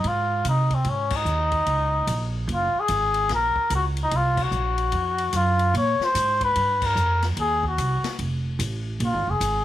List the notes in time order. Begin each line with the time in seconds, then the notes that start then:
0.04 G#2 F4, kick, ride
0.45 C3, kick, hi-hat pedal, ride
0.49 D#4
0.70 C4, kick, ride
0.84 G#2, kick, ride
0.89 C#4
1.10 kick, crash
1.16 D#4
1.25 D#2, hi-hat pedal
1.52 kick, ride
1.66 C#2, kick, ride
2.07 A#1, kick, hi-hat pedal, ride
2.48 F#1, kick, ride
2.53 F4
2.74 muted upright bass stroke
2.80 G#4
2.88 G#1, kick, hi-hat pedal, ride
3.14 ride
3.29 A#1, kick, snare, ride
3.35 A#4
3.56 muted upright bass stroke, kick
3.70 C#2, kick, hi-hat pedal, ride
3.75 F#4
3.97 ride
4.03 D#4
4.11 C2, kick, ride
4.16 F4
4.37 kick, crash
4.43 F#4
4.51 A#1, hi-hat pedal
4.78 ride
4.92 F2, kick, ride
5.18 ride
5.33 F#2 F4, kick, hi-hat pedal, ride
5.59 ride
5.74 A#2 C#5, kick, ride
5.99 muted upright bass stroke, snare
6.05 C5
6.15 G#2, kick, hi-hat pedal, ride
6.41 B4, kick, ride
6.55 G2, kick, ride
6.82 kick, crash
6.86 A#4
6.95 F2, hi-hat pedal
7.22 snare, ride
7.37 D#2 G#4, kick, ride
7.63 kick
7.67 F#4
7.78 C2, kick, hi-hat pedal, ride
8.03 muted upright bass stroke, snare, ride
8.19 F1, kick, ride
8.59 A1, kick, hi-hat pedal, ride
9.00 A#1, kick, ride
9.04 F4
9.13 G#1
9.27 F1 G#4
9.40 G#1, kick, hi-hat pedal, ride